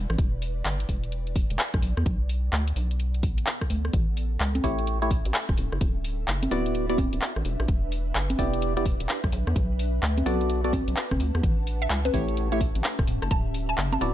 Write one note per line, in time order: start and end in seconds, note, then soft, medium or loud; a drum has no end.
0.00 2.66 E4 medium
0.00 2.69 B4 medium
0.00 3.94 D5 medium
0.10 0.17 A1 loud
0.10 cross-stick medium
0.18 kick loud
0.18 closed hi-hat medium
0.41 1.83 G5 medium
0.41 open hi-hat loud
0.65 0.86 G1 medium
0.65 clap loud
0.65 closed hi-hat medium
0.80 closed hi-hat medium
0.89 1.46 E1 medium
0.89 kick medium
0.89 open hi-hat loud
1.04 closed hi-hat soft
1.12 closed hi-hat medium
1.27 closed hi-hat soft
1.36 kick loud
1.36 open hi-hat loud
1.50 1.57 E1 medium
1.50 closed hi-hat medium
1.59 clap loud
1.59 closed hi-hat medium
1.74 1.81 B1 medium
1.74 kick loud
1.74 cross-stick medium
1.82 1.95 B1 loud
1.82 4.60 B3 medium
1.82 open hi-hat loud
1.97 2.04 E2 loud
1.97 cross-stick medium
2.06 2.50 B1 loud
2.06 kick loud
2.06 closed hi-hat medium
2.18 6.34 A4 medium
2.29 open hi-hat loud
2.53 2.73 D2 loud
2.53 clap loud
2.53 closed hi-hat medium
2.62 3.93 F#5 medium
2.68 closed hi-hat medium
2.76 3.39 B1 medium
2.76 open hi-hat loud
2.91 closed hi-hat soft
3.00 closed hi-hat medium
3.14 closed hi-hat soft
3.23 kick loud
3.23 open hi-hat loud
3.38 3.45 A1 medium
3.38 closed hi-hat medium
3.47 clap loud
3.47 closed hi-hat medium
3.61 kick medium
3.61 cross-stick medium
3.70 3.90 D2 medium
3.70 open hi-hat loud
3.85 cross-stick medium
3.93 4.38 A1 loud
3.93 5.58 C#4 medium
3.93 kick loud
3.93 closed hi-hat medium
4.17 open hi-hat loud
4.34 5.58 G5 medium
4.40 4.61 C#2 loud
4.40 clap loud
4.40 closed hi-hat medium
4.55 closed hi-hat medium
4.55 high conga medium
4.64 5.21 A1 medium
4.64 4.98 A3 medium
4.64 4.98 E4 medium
4.64 4.98 G4 medium
4.64 4.98 C#5 loud
4.64 kick medium
4.64 open hi-hat loud
4.68 10.19 E5 medium
4.79 closed hi-hat soft
4.87 closed hi-hat medium
5.02 5.11 A3 medium
5.02 5.11 E4 medium
5.02 5.11 G4 medium
5.02 5.11 C#5 loud
5.02 closed hi-hat soft
5.11 kick loud
5.11 open hi-hat loud
5.25 5.32 A1 medium
5.25 closed hi-hat medium
5.34 clap loud
5.34 closed hi-hat medium
5.49 5.56 E1 medium
5.49 kick loud
5.49 cross-stick medium
5.58 5.70 D1 loud
5.58 11.44 D4 medium
5.58 open hi-hat loud
5.72 5.79 F#1 loud
5.72 cross-stick medium
5.81 6.25 D1 loud
5.81 kick loud
5.81 closed hi-hat medium
5.94 12.10 B4 medium
6.04 open hi-hat loud
6.28 6.48 F#1 loud
6.28 7.45 F#5 medium
6.28 clap loud
6.28 closed hi-hat medium
6.43 closed hi-hat medium
6.43 high conga medium
6.51 7.09 D1 loud
6.51 6.86 B3 medium
6.51 6.86 E4 medium
6.51 6.86 F#4 medium
6.51 6.86 D5 loud
6.51 open hi-hat loud
6.66 closed hi-hat soft
6.75 closed hi-hat medium
6.90 6.98 B3 medium
6.90 6.98 E4 medium
6.90 6.98 F#4 medium
6.90 6.98 D5 loud
6.90 closed hi-hat soft
6.98 kick loud
6.98 open hi-hat loud
6.98 high conga medium
7.13 7.20 D1 medium
7.13 closed hi-hat medium
7.22 clap loud
7.22 closed hi-hat medium
7.36 7.43 A1 medium
7.36 cross-stick medium
7.45 7.57 E1 loud
7.45 open hi-hat loud
7.60 7.67 A1 loud
7.60 cross-stick medium
7.68 8.13 E1 loud
7.68 9.33 G5 medium
7.68 kick loud
7.68 closed hi-hat medium
7.92 open hi-hat loud
8.15 8.36 G1 loud
8.15 clap loud
8.15 closed hi-hat medium
8.30 closed hi-hat medium
8.30 high conga medium
8.39 8.96 E1 medium
8.39 8.73 B3 medium
8.39 8.73 E4 medium
8.39 8.73 G4 medium
8.39 8.73 D5 loud
8.39 kick medium
8.39 open hi-hat loud
8.54 closed hi-hat soft
8.62 closed hi-hat medium
8.77 8.86 B3 medium
8.77 8.86 E4 medium
8.77 8.86 G4 medium
8.77 8.86 D5 loud
8.77 closed hi-hat soft
8.86 kick loud
8.86 open hi-hat loud
9.00 9.07 E1 medium
9.00 closed hi-hat medium
9.09 clap loud
9.09 closed hi-hat medium
9.24 9.31 B1 medium
9.24 kick loud
9.24 cross-stick medium
9.32 9.44 B1 loud
9.32 open hi-hat loud
9.47 9.54 E2 loud
9.47 cross-stick medium
9.56 10.00 B1 loud
9.56 kick loud
9.56 closed hi-hat medium
9.79 open hi-hat loud
10.03 10.23 D2 medium
10.03 12.10 F#5 medium
10.03 clap loud
10.03 closed hi-hat medium
10.18 closed hi-hat medium
10.18 high conga medium
10.25 10.83 B1 medium
10.25 10.61 B3 medium
10.25 10.61 F#4 medium
10.25 10.61 A4 medium
10.25 10.61 D5 loud
10.25 13.74 A5 medium
10.25 open hi-hat loud
10.41 closed hi-hat soft
10.50 closed hi-hat medium
10.64 10.73 B3 loud
10.64 10.73 F#4 medium
10.64 10.73 A4 medium
10.64 10.73 D5 loud
10.64 closed hi-hat soft
10.73 kick loud
10.73 open hi-hat loud
10.73 high conga medium
10.88 10.95 B1 medium
10.88 closed hi-hat medium
10.97 clap loud
10.97 closed hi-hat medium
11.11 11.18 F#1 medium
11.11 kick medium
11.11 cross-stick medium
11.11 high conga medium
11.20 11.32 D2 loud
11.20 open hi-hat loud
11.35 11.42 E2 loud
11.35 cross-stick medium
11.43 11.88 A1 loud
11.43 13.08 C#4 medium
11.43 kick loud
11.43 closed hi-hat medium
11.57 13.07 G4 medium
11.67 open hi-hat loud
11.82 11.98 E5 medium
11.90 12.11 C#2 loud
11.90 clap loud
11.90 closed hi-hat medium
12.05 12.22 B4 medium
12.05 14.14 E5 medium
12.05 closed hi-hat medium
12.05 high conga medium
12.14 12.71 A1 medium
12.14 12.48 A3 medium
12.14 12.48 E4 medium
12.14 12.48 G4 medium
12.14 12.48 C#5 loud
12.14 kick medium
12.14 open hi-hat loud
12.29 closed hi-hat soft
12.37 closed hi-hat medium
12.52 12.61 A3 medium
12.52 12.61 E4 medium
12.52 12.61 G4 medium
12.52 12.61 C#5 loud
12.52 12.69 E5 medium
12.52 closed hi-hat soft
12.61 kick loud
12.61 open hi-hat loud
12.75 12.82 A1 medium
12.75 closed hi-hat medium
12.84 clap loud
12.84 closed hi-hat medium
12.99 13.06 E1 medium
12.99 kick loud
12.99 cross-stick medium
13.07 13.20 D1 loud
13.07 14.14 D4 medium
13.07 open hi-hat loud
13.22 13.29 F#1 loud
13.22 14.14 F#4 loud
13.22 13.28 A5 medium
13.22 cross-stick medium
13.31 13.75 D1 loud
13.31 13.40 A5 medium
13.31 kick loud
13.31 closed hi-hat medium
13.54 open hi-hat loud
13.69 13.86 A5 medium
13.78 13.98 F#1 loud
13.78 clap loud
13.78 closed hi-hat medium
13.92 13.98 A5 medium
13.92 14.14 B5 medium
13.92 closed hi-hat medium
13.92 high conga medium
14.01 14.14 D1 medium
14.01 14.14 B3 medium
14.01 14.14 E4 medium
14.01 14.14 F#4 medium
14.01 14.14 D5 loud
14.01 14.11 A5 medium
14.01 open hi-hat loud